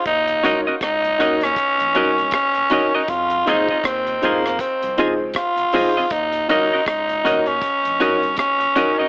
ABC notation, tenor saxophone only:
X:1
M:4/4
L:1/16
Q:"Swing 16ths" 1/4=79
K:Ebdor
V:1 name="Tenor saxophone"
E2 E2 E3 D4- D D3 E | F2 E2 C2 B,2 C2 z2 F4 | E2 E2 E3 D4- D D3 E |]